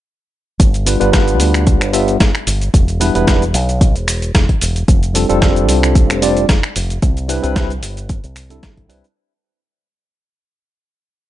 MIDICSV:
0, 0, Header, 1, 4, 480
1, 0, Start_track
1, 0, Tempo, 535714
1, 534, Time_signature, 4, 2, 24, 8
1, 10119, End_track
2, 0, Start_track
2, 0, Title_t, "Tine electric piano"
2, 0, Program_c, 0, 4
2, 770, Note_on_c, 0, 55, 78
2, 774, Note_on_c, 0, 59, 70
2, 775, Note_on_c, 0, 62, 70
2, 775, Note_on_c, 0, 65, 69
2, 779, Note_on_c, 0, 71, 83
2, 870, Note_off_c, 0, 55, 0
2, 873, Note_off_c, 0, 59, 0
2, 873, Note_off_c, 0, 62, 0
2, 873, Note_off_c, 0, 65, 0
2, 875, Note_off_c, 0, 71, 0
2, 894, Note_on_c, 0, 55, 86
2, 896, Note_on_c, 0, 59, 83
2, 899, Note_on_c, 0, 62, 78
2, 901, Note_on_c, 0, 65, 78
2, 901, Note_on_c, 0, 71, 94
2, 982, Note_off_c, 0, 55, 0
2, 984, Note_off_c, 0, 59, 0
2, 985, Note_off_c, 0, 62, 0
2, 986, Note_off_c, 0, 65, 0
2, 986, Note_off_c, 0, 71, 0
2, 1002, Note_on_c, 0, 55, 88
2, 1007, Note_on_c, 0, 59, 79
2, 1010, Note_on_c, 0, 62, 82
2, 1015, Note_on_c, 0, 65, 81
2, 1019, Note_on_c, 0, 71, 97
2, 1701, Note_off_c, 0, 55, 0
2, 1704, Note_off_c, 0, 59, 0
2, 1706, Note_off_c, 0, 62, 0
2, 1708, Note_off_c, 0, 65, 0
2, 1710, Note_off_c, 0, 71, 0
2, 1727, Note_on_c, 0, 55, 86
2, 1730, Note_on_c, 0, 59, 83
2, 1731, Note_on_c, 0, 62, 78
2, 1735, Note_on_c, 0, 65, 81
2, 1736, Note_on_c, 0, 76, 94
2, 1935, Note_off_c, 0, 55, 0
2, 1937, Note_off_c, 0, 59, 0
2, 1937, Note_off_c, 0, 62, 0
2, 1939, Note_off_c, 0, 65, 0
2, 1940, Note_off_c, 0, 76, 0
2, 2690, Note_on_c, 0, 55, 95
2, 2692, Note_on_c, 0, 59, 91
2, 2693, Note_on_c, 0, 62, 90
2, 2695, Note_on_c, 0, 64, 88
2, 2698, Note_on_c, 0, 71, 109
2, 2802, Note_off_c, 0, 55, 0
2, 2803, Note_off_c, 0, 59, 0
2, 2804, Note_off_c, 0, 62, 0
2, 2805, Note_off_c, 0, 64, 0
2, 2806, Note_off_c, 0, 71, 0
2, 2821, Note_on_c, 0, 55, 81
2, 2822, Note_on_c, 0, 59, 71
2, 2825, Note_on_c, 0, 62, 72
2, 2827, Note_on_c, 0, 64, 69
2, 2831, Note_on_c, 0, 71, 88
2, 2916, Note_off_c, 0, 55, 0
2, 2917, Note_off_c, 0, 59, 0
2, 2918, Note_off_c, 0, 62, 0
2, 2919, Note_off_c, 0, 64, 0
2, 2921, Note_off_c, 0, 71, 0
2, 2933, Note_on_c, 0, 55, 76
2, 2935, Note_on_c, 0, 59, 69
2, 2937, Note_on_c, 0, 62, 69
2, 2938, Note_on_c, 0, 64, 71
2, 2941, Note_on_c, 0, 71, 80
2, 3069, Note_off_c, 0, 55, 0
2, 3070, Note_off_c, 0, 59, 0
2, 3071, Note_off_c, 0, 62, 0
2, 3071, Note_off_c, 0, 64, 0
2, 3073, Note_off_c, 0, 71, 0
2, 4609, Note_on_c, 0, 55, 81
2, 4612, Note_on_c, 0, 60, 74
2, 4616, Note_on_c, 0, 62, 71
2, 4617, Note_on_c, 0, 65, 70
2, 4619, Note_on_c, 0, 69, 85
2, 4710, Note_off_c, 0, 55, 0
2, 4711, Note_off_c, 0, 60, 0
2, 4714, Note_off_c, 0, 62, 0
2, 4714, Note_off_c, 0, 65, 0
2, 4715, Note_off_c, 0, 69, 0
2, 4737, Note_on_c, 0, 55, 89
2, 4740, Note_on_c, 0, 60, 82
2, 4741, Note_on_c, 0, 62, 84
2, 4744, Note_on_c, 0, 65, 83
2, 4747, Note_on_c, 0, 69, 100
2, 4824, Note_off_c, 0, 55, 0
2, 4825, Note_off_c, 0, 60, 0
2, 4826, Note_off_c, 0, 62, 0
2, 4828, Note_off_c, 0, 65, 0
2, 4829, Note_off_c, 0, 69, 0
2, 4845, Note_on_c, 0, 55, 89
2, 4848, Note_on_c, 0, 60, 79
2, 4853, Note_on_c, 0, 62, 83
2, 4858, Note_on_c, 0, 65, 84
2, 4861, Note_on_c, 0, 69, 97
2, 5543, Note_off_c, 0, 55, 0
2, 5545, Note_off_c, 0, 60, 0
2, 5547, Note_off_c, 0, 62, 0
2, 5550, Note_off_c, 0, 65, 0
2, 5551, Note_off_c, 0, 69, 0
2, 5571, Note_on_c, 0, 55, 89
2, 5574, Note_on_c, 0, 60, 83
2, 5576, Note_on_c, 0, 62, 80
2, 5577, Note_on_c, 0, 65, 82
2, 5580, Note_on_c, 0, 74, 96
2, 5777, Note_off_c, 0, 55, 0
2, 5779, Note_off_c, 0, 60, 0
2, 5780, Note_off_c, 0, 62, 0
2, 5780, Note_off_c, 0, 65, 0
2, 5782, Note_off_c, 0, 74, 0
2, 6525, Note_on_c, 0, 55, 100
2, 6528, Note_on_c, 0, 60, 91
2, 6530, Note_on_c, 0, 62, 89
2, 6533, Note_on_c, 0, 64, 91
2, 6536, Note_on_c, 0, 71, 111
2, 6640, Note_off_c, 0, 55, 0
2, 6641, Note_off_c, 0, 60, 0
2, 6642, Note_off_c, 0, 62, 0
2, 6644, Note_off_c, 0, 64, 0
2, 6645, Note_off_c, 0, 71, 0
2, 6654, Note_on_c, 0, 55, 79
2, 6656, Note_on_c, 0, 60, 76
2, 6658, Note_on_c, 0, 62, 73
2, 6660, Note_on_c, 0, 64, 71
2, 6662, Note_on_c, 0, 71, 89
2, 6753, Note_off_c, 0, 55, 0
2, 6754, Note_off_c, 0, 60, 0
2, 6754, Note_off_c, 0, 62, 0
2, 6755, Note_off_c, 0, 64, 0
2, 6757, Note_off_c, 0, 71, 0
2, 6766, Note_on_c, 0, 55, 77
2, 6767, Note_on_c, 0, 60, 71
2, 6769, Note_on_c, 0, 62, 73
2, 6771, Note_on_c, 0, 64, 69
2, 6773, Note_on_c, 0, 71, 85
2, 6905, Note_off_c, 0, 55, 0
2, 6906, Note_off_c, 0, 60, 0
2, 6907, Note_off_c, 0, 62, 0
2, 6908, Note_off_c, 0, 64, 0
2, 6909, Note_off_c, 0, 71, 0
2, 7613, Note_on_c, 0, 55, 77
2, 7616, Note_on_c, 0, 62, 69
2, 7617, Note_on_c, 0, 60, 69
2, 7621, Note_on_c, 0, 64, 71
2, 7623, Note_on_c, 0, 69, 86
2, 7942, Note_off_c, 0, 55, 0
2, 7944, Note_off_c, 0, 60, 0
2, 7944, Note_off_c, 0, 62, 0
2, 7946, Note_off_c, 0, 64, 0
2, 7947, Note_off_c, 0, 69, 0
2, 7963, Note_on_c, 0, 55, 94
2, 7963, Note_on_c, 0, 60, 87
2, 7966, Note_on_c, 0, 62, 88
2, 7968, Note_on_c, 0, 64, 88
2, 7971, Note_on_c, 0, 71, 101
2, 8104, Note_off_c, 0, 55, 0
2, 8104, Note_off_c, 0, 60, 0
2, 8105, Note_off_c, 0, 62, 0
2, 8106, Note_off_c, 0, 64, 0
2, 8108, Note_off_c, 0, 71, 0
2, 10119, End_track
3, 0, Start_track
3, 0, Title_t, "Fingered electric bass"
3, 0, Program_c, 1, 33
3, 535, Note_on_c, 1, 31, 102
3, 856, Note_off_c, 1, 31, 0
3, 905, Note_on_c, 1, 31, 90
3, 1254, Note_off_c, 1, 31, 0
3, 1254, Note_on_c, 1, 38, 104
3, 1622, Note_off_c, 1, 38, 0
3, 1622, Note_on_c, 1, 31, 84
3, 1932, Note_off_c, 1, 31, 0
3, 1974, Note_on_c, 1, 31, 95
3, 2074, Note_off_c, 1, 31, 0
3, 2212, Note_on_c, 1, 31, 97
3, 2402, Note_off_c, 1, 31, 0
3, 2454, Note_on_c, 1, 28, 100
3, 2775, Note_off_c, 1, 28, 0
3, 2823, Note_on_c, 1, 28, 91
3, 3172, Note_off_c, 1, 28, 0
3, 3172, Note_on_c, 1, 35, 106
3, 3544, Note_off_c, 1, 35, 0
3, 3544, Note_on_c, 1, 28, 81
3, 3853, Note_off_c, 1, 28, 0
3, 3895, Note_on_c, 1, 28, 101
3, 3994, Note_off_c, 1, 28, 0
3, 4135, Note_on_c, 1, 28, 92
3, 4323, Note_off_c, 1, 28, 0
3, 4376, Note_on_c, 1, 29, 102
3, 4696, Note_off_c, 1, 29, 0
3, 4748, Note_on_c, 1, 29, 91
3, 5098, Note_off_c, 1, 29, 0
3, 5098, Note_on_c, 1, 36, 105
3, 5466, Note_off_c, 1, 36, 0
3, 5466, Note_on_c, 1, 29, 88
3, 5774, Note_off_c, 1, 29, 0
3, 5815, Note_on_c, 1, 29, 103
3, 5914, Note_off_c, 1, 29, 0
3, 6056, Note_on_c, 1, 29, 97
3, 6244, Note_off_c, 1, 29, 0
3, 6295, Note_on_c, 1, 36, 105
3, 6616, Note_off_c, 1, 36, 0
3, 6664, Note_on_c, 1, 36, 94
3, 7016, Note_off_c, 1, 36, 0
3, 7016, Note_on_c, 1, 31, 105
3, 7336, Note_off_c, 1, 31, 0
3, 7381, Note_on_c, 1, 36, 90
3, 7692, Note_off_c, 1, 36, 0
3, 7732, Note_on_c, 1, 31, 82
3, 7974, Note_off_c, 1, 31, 0
3, 7974, Note_on_c, 1, 36, 100
3, 8074, Note_off_c, 1, 36, 0
3, 10119, End_track
4, 0, Start_track
4, 0, Title_t, "Drums"
4, 535, Note_on_c, 9, 36, 118
4, 536, Note_on_c, 9, 42, 72
4, 539, Note_on_c, 9, 69, 46
4, 625, Note_off_c, 9, 36, 0
4, 625, Note_off_c, 9, 42, 0
4, 629, Note_off_c, 9, 69, 0
4, 664, Note_on_c, 9, 42, 37
4, 668, Note_on_c, 9, 69, 30
4, 754, Note_off_c, 9, 42, 0
4, 757, Note_off_c, 9, 69, 0
4, 775, Note_on_c, 9, 46, 109
4, 778, Note_on_c, 9, 69, 83
4, 865, Note_off_c, 9, 46, 0
4, 868, Note_off_c, 9, 69, 0
4, 904, Note_on_c, 9, 42, 58
4, 907, Note_on_c, 9, 69, 33
4, 993, Note_off_c, 9, 42, 0
4, 997, Note_off_c, 9, 69, 0
4, 1015, Note_on_c, 9, 36, 118
4, 1015, Note_on_c, 9, 42, 71
4, 1017, Note_on_c, 9, 38, 124
4, 1019, Note_on_c, 9, 69, 44
4, 1104, Note_off_c, 9, 36, 0
4, 1105, Note_off_c, 9, 42, 0
4, 1107, Note_off_c, 9, 38, 0
4, 1108, Note_off_c, 9, 69, 0
4, 1144, Note_on_c, 9, 42, 38
4, 1147, Note_on_c, 9, 69, 31
4, 1233, Note_off_c, 9, 42, 0
4, 1236, Note_off_c, 9, 69, 0
4, 1252, Note_on_c, 9, 46, 107
4, 1255, Note_on_c, 9, 69, 74
4, 1342, Note_off_c, 9, 46, 0
4, 1345, Note_off_c, 9, 69, 0
4, 1383, Note_on_c, 9, 26, 80
4, 1383, Note_on_c, 9, 42, 53
4, 1386, Note_on_c, 9, 69, 33
4, 1473, Note_off_c, 9, 26, 0
4, 1473, Note_off_c, 9, 42, 0
4, 1476, Note_off_c, 9, 69, 0
4, 1493, Note_on_c, 9, 42, 66
4, 1495, Note_on_c, 9, 36, 115
4, 1496, Note_on_c, 9, 69, 44
4, 1583, Note_off_c, 9, 42, 0
4, 1584, Note_off_c, 9, 36, 0
4, 1586, Note_off_c, 9, 69, 0
4, 1623, Note_on_c, 9, 26, 76
4, 1623, Note_on_c, 9, 42, 39
4, 1627, Note_on_c, 9, 69, 31
4, 1713, Note_off_c, 9, 26, 0
4, 1713, Note_off_c, 9, 42, 0
4, 1716, Note_off_c, 9, 69, 0
4, 1733, Note_on_c, 9, 46, 104
4, 1737, Note_on_c, 9, 69, 78
4, 1823, Note_off_c, 9, 46, 0
4, 1826, Note_off_c, 9, 69, 0
4, 1863, Note_on_c, 9, 42, 55
4, 1866, Note_on_c, 9, 69, 35
4, 1953, Note_off_c, 9, 42, 0
4, 1956, Note_off_c, 9, 69, 0
4, 1974, Note_on_c, 9, 42, 69
4, 1975, Note_on_c, 9, 36, 115
4, 1976, Note_on_c, 9, 38, 127
4, 1977, Note_on_c, 9, 69, 47
4, 2063, Note_off_c, 9, 42, 0
4, 2064, Note_off_c, 9, 36, 0
4, 2065, Note_off_c, 9, 38, 0
4, 2066, Note_off_c, 9, 69, 0
4, 2103, Note_on_c, 9, 26, 80
4, 2103, Note_on_c, 9, 42, 39
4, 2193, Note_off_c, 9, 26, 0
4, 2193, Note_off_c, 9, 42, 0
4, 2213, Note_on_c, 9, 46, 107
4, 2217, Note_on_c, 9, 69, 78
4, 2303, Note_off_c, 9, 46, 0
4, 2306, Note_off_c, 9, 69, 0
4, 2343, Note_on_c, 9, 42, 55
4, 2346, Note_on_c, 9, 69, 35
4, 2433, Note_off_c, 9, 42, 0
4, 2436, Note_off_c, 9, 69, 0
4, 2453, Note_on_c, 9, 36, 124
4, 2455, Note_on_c, 9, 42, 69
4, 2458, Note_on_c, 9, 69, 45
4, 2543, Note_off_c, 9, 36, 0
4, 2544, Note_off_c, 9, 42, 0
4, 2548, Note_off_c, 9, 69, 0
4, 2582, Note_on_c, 9, 42, 39
4, 2585, Note_on_c, 9, 69, 30
4, 2672, Note_off_c, 9, 42, 0
4, 2675, Note_off_c, 9, 69, 0
4, 2695, Note_on_c, 9, 46, 112
4, 2698, Note_on_c, 9, 69, 76
4, 2784, Note_off_c, 9, 46, 0
4, 2788, Note_off_c, 9, 69, 0
4, 2824, Note_on_c, 9, 42, 56
4, 2827, Note_on_c, 9, 69, 32
4, 2914, Note_off_c, 9, 42, 0
4, 2917, Note_off_c, 9, 69, 0
4, 2934, Note_on_c, 9, 36, 127
4, 2935, Note_on_c, 9, 42, 64
4, 2937, Note_on_c, 9, 38, 122
4, 2938, Note_on_c, 9, 69, 43
4, 3023, Note_off_c, 9, 36, 0
4, 3024, Note_off_c, 9, 42, 0
4, 3026, Note_off_c, 9, 38, 0
4, 3028, Note_off_c, 9, 69, 0
4, 3066, Note_on_c, 9, 42, 38
4, 3069, Note_on_c, 9, 69, 30
4, 3155, Note_off_c, 9, 42, 0
4, 3159, Note_off_c, 9, 69, 0
4, 3173, Note_on_c, 9, 46, 103
4, 3177, Note_on_c, 9, 69, 74
4, 3263, Note_off_c, 9, 46, 0
4, 3266, Note_off_c, 9, 69, 0
4, 3305, Note_on_c, 9, 42, 52
4, 3309, Note_on_c, 9, 69, 32
4, 3395, Note_off_c, 9, 42, 0
4, 3398, Note_off_c, 9, 69, 0
4, 3414, Note_on_c, 9, 36, 119
4, 3415, Note_on_c, 9, 42, 66
4, 3419, Note_on_c, 9, 69, 42
4, 3504, Note_off_c, 9, 36, 0
4, 3505, Note_off_c, 9, 42, 0
4, 3508, Note_off_c, 9, 69, 0
4, 3545, Note_on_c, 9, 42, 36
4, 3548, Note_on_c, 9, 69, 29
4, 3634, Note_off_c, 9, 42, 0
4, 3638, Note_off_c, 9, 69, 0
4, 3654, Note_on_c, 9, 26, 60
4, 3654, Note_on_c, 9, 46, 107
4, 3657, Note_on_c, 9, 69, 74
4, 3744, Note_off_c, 9, 26, 0
4, 3744, Note_off_c, 9, 46, 0
4, 3747, Note_off_c, 9, 69, 0
4, 3784, Note_on_c, 9, 42, 55
4, 3787, Note_on_c, 9, 69, 33
4, 3873, Note_off_c, 9, 42, 0
4, 3877, Note_off_c, 9, 69, 0
4, 3895, Note_on_c, 9, 36, 122
4, 3895, Note_on_c, 9, 42, 70
4, 3897, Note_on_c, 9, 38, 124
4, 3898, Note_on_c, 9, 69, 45
4, 3984, Note_off_c, 9, 36, 0
4, 3984, Note_off_c, 9, 42, 0
4, 3986, Note_off_c, 9, 38, 0
4, 3987, Note_off_c, 9, 69, 0
4, 4024, Note_on_c, 9, 36, 63
4, 4024, Note_on_c, 9, 42, 38
4, 4114, Note_off_c, 9, 36, 0
4, 4114, Note_off_c, 9, 42, 0
4, 4135, Note_on_c, 9, 46, 107
4, 4138, Note_on_c, 9, 69, 79
4, 4224, Note_off_c, 9, 46, 0
4, 4228, Note_off_c, 9, 69, 0
4, 4265, Note_on_c, 9, 42, 56
4, 4268, Note_on_c, 9, 69, 34
4, 4354, Note_off_c, 9, 42, 0
4, 4358, Note_off_c, 9, 69, 0
4, 4375, Note_on_c, 9, 36, 124
4, 4375, Note_on_c, 9, 42, 66
4, 4378, Note_on_c, 9, 69, 43
4, 4464, Note_off_c, 9, 36, 0
4, 4464, Note_off_c, 9, 42, 0
4, 4467, Note_off_c, 9, 69, 0
4, 4504, Note_on_c, 9, 42, 35
4, 4508, Note_on_c, 9, 69, 30
4, 4594, Note_off_c, 9, 42, 0
4, 4597, Note_off_c, 9, 69, 0
4, 4614, Note_on_c, 9, 46, 113
4, 4618, Note_on_c, 9, 69, 75
4, 4704, Note_off_c, 9, 46, 0
4, 4707, Note_off_c, 9, 69, 0
4, 4744, Note_on_c, 9, 42, 52
4, 4748, Note_on_c, 9, 69, 33
4, 4834, Note_off_c, 9, 42, 0
4, 4837, Note_off_c, 9, 69, 0
4, 4854, Note_on_c, 9, 36, 124
4, 4854, Note_on_c, 9, 42, 63
4, 4856, Note_on_c, 9, 38, 123
4, 4858, Note_on_c, 9, 69, 41
4, 4944, Note_off_c, 9, 36, 0
4, 4944, Note_off_c, 9, 42, 0
4, 4946, Note_off_c, 9, 38, 0
4, 4947, Note_off_c, 9, 69, 0
4, 4985, Note_on_c, 9, 42, 35
4, 4988, Note_on_c, 9, 69, 30
4, 5074, Note_off_c, 9, 42, 0
4, 5078, Note_off_c, 9, 69, 0
4, 5095, Note_on_c, 9, 46, 112
4, 5098, Note_on_c, 9, 69, 74
4, 5185, Note_off_c, 9, 46, 0
4, 5188, Note_off_c, 9, 69, 0
4, 5226, Note_on_c, 9, 26, 81
4, 5226, Note_on_c, 9, 42, 50
4, 5230, Note_on_c, 9, 69, 34
4, 5316, Note_off_c, 9, 26, 0
4, 5316, Note_off_c, 9, 42, 0
4, 5319, Note_off_c, 9, 69, 0
4, 5335, Note_on_c, 9, 36, 123
4, 5336, Note_on_c, 9, 42, 67
4, 5339, Note_on_c, 9, 69, 44
4, 5424, Note_off_c, 9, 36, 0
4, 5425, Note_off_c, 9, 42, 0
4, 5429, Note_off_c, 9, 69, 0
4, 5466, Note_on_c, 9, 26, 83
4, 5466, Note_on_c, 9, 42, 37
4, 5469, Note_on_c, 9, 69, 31
4, 5555, Note_off_c, 9, 26, 0
4, 5555, Note_off_c, 9, 42, 0
4, 5559, Note_off_c, 9, 69, 0
4, 5576, Note_on_c, 9, 46, 114
4, 5579, Note_on_c, 9, 69, 76
4, 5665, Note_off_c, 9, 46, 0
4, 5669, Note_off_c, 9, 69, 0
4, 5704, Note_on_c, 9, 42, 53
4, 5708, Note_on_c, 9, 69, 34
4, 5794, Note_off_c, 9, 42, 0
4, 5797, Note_off_c, 9, 69, 0
4, 5814, Note_on_c, 9, 36, 126
4, 5814, Note_on_c, 9, 42, 64
4, 5816, Note_on_c, 9, 38, 127
4, 5817, Note_on_c, 9, 69, 43
4, 5903, Note_off_c, 9, 42, 0
4, 5904, Note_off_c, 9, 36, 0
4, 5905, Note_off_c, 9, 38, 0
4, 5907, Note_off_c, 9, 69, 0
4, 5944, Note_on_c, 9, 26, 83
4, 5944, Note_on_c, 9, 42, 37
4, 6034, Note_off_c, 9, 26, 0
4, 6034, Note_off_c, 9, 42, 0
4, 6055, Note_on_c, 9, 46, 113
4, 6058, Note_on_c, 9, 69, 74
4, 6145, Note_off_c, 9, 46, 0
4, 6148, Note_off_c, 9, 69, 0
4, 6185, Note_on_c, 9, 42, 54
4, 6189, Note_on_c, 9, 69, 33
4, 6275, Note_off_c, 9, 42, 0
4, 6278, Note_off_c, 9, 69, 0
4, 6293, Note_on_c, 9, 42, 68
4, 6294, Note_on_c, 9, 36, 125
4, 6296, Note_on_c, 9, 69, 45
4, 6383, Note_off_c, 9, 42, 0
4, 6384, Note_off_c, 9, 36, 0
4, 6386, Note_off_c, 9, 69, 0
4, 6423, Note_on_c, 9, 42, 36
4, 6426, Note_on_c, 9, 69, 30
4, 6512, Note_off_c, 9, 42, 0
4, 6516, Note_off_c, 9, 69, 0
4, 6533, Note_on_c, 9, 46, 113
4, 6536, Note_on_c, 9, 69, 82
4, 6622, Note_off_c, 9, 46, 0
4, 6626, Note_off_c, 9, 69, 0
4, 6662, Note_on_c, 9, 42, 51
4, 6666, Note_on_c, 9, 69, 34
4, 6752, Note_off_c, 9, 42, 0
4, 6755, Note_off_c, 9, 69, 0
4, 6773, Note_on_c, 9, 42, 64
4, 6774, Note_on_c, 9, 36, 127
4, 6775, Note_on_c, 9, 38, 121
4, 6776, Note_on_c, 9, 69, 44
4, 6862, Note_off_c, 9, 42, 0
4, 6864, Note_off_c, 9, 36, 0
4, 6864, Note_off_c, 9, 38, 0
4, 6866, Note_off_c, 9, 69, 0
4, 6903, Note_on_c, 9, 42, 35
4, 6907, Note_on_c, 9, 69, 31
4, 6993, Note_off_c, 9, 42, 0
4, 6996, Note_off_c, 9, 69, 0
4, 7013, Note_on_c, 9, 46, 110
4, 7016, Note_on_c, 9, 69, 77
4, 7102, Note_off_c, 9, 46, 0
4, 7106, Note_off_c, 9, 69, 0
4, 7142, Note_on_c, 9, 42, 53
4, 7146, Note_on_c, 9, 69, 34
4, 7232, Note_off_c, 9, 42, 0
4, 7235, Note_off_c, 9, 69, 0
4, 7250, Note_on_c, 9, 42, 63
4, 7253, Note_on_c, 9, 36, 120
4, 7254, Note_on_c, 9, 69, 45
4, 7340, Note_off_c, 9, 42, 0
4, 7343, Note_off_c, 9, 36, 0
4, 7343, Note_off_c, 9, 69, 0
4, 7381, Note_on_c, 9, 42, 36
4, 7384, Note_on_c, 9, 69, 30
4, 7470, Note_off_c, 9, 42, 0
4, 7473, Note_off_c, 9, 69, 0
4, 7489, Note_on_c, 9, 26, 70
4, 7489, Note_on_c, 9, 46, 107
4, 7493, Note_on_c, 9, 69, 80
4, 7579, Note_off_c, 9, 26, 0
4, 7579, Note_off_c, 9, 46, 0
4, 7582, Note_off_c, 9, 69, 0
4, 7619, Note_on_c, 9, 42, 55
4, 7623, Note_on_c, 9, 69, 34
4, 7709, Note_off_c, 9, 42, 0
4, 7712, Note_off_c, 9, 69, 0
4, 7731, Note_on_c, 9, 42, 65
4, 7732, Note_on_c, 9, 36, 127
4, 7733, Note_on_c, 9, 38, 123
4, 7734, Note_on_c, 9, 69, 45
4, 7821, Note_off_c, 9, 42, 0
4, 7822, Note_off_c, 9, 36, 0
4, 7823, Note_off_c, 9, 38, 0
4, 7824, Note_off_c, 9, 69, 0
4, 7861, Note_on_c, 9, 36, 63
4, 7862, Note_on_c, 9, 42, 37
4, 7951, Note_off_c, 9, 36, 0
4, 7951, Note_off_c, 9, 42, 0
4, 7971, Note_on_c, 9, 46, 114
4, 7974, Note_on_c, 9, 69, 79
4, 8061, Note_off_c, 9, 46, 0
4, 8064, Note_off_c, 9, 69, 0
4, 8102, Note_on_c, 9, 42, 52
4, 8105, Note_on_c, 9, 69, 35
4, 8192, Note_off_c, 9, 42, 0
4, 8195, Note_off_c, 9, 69, 0
4, 10119, End_track
0, 0, End_of_file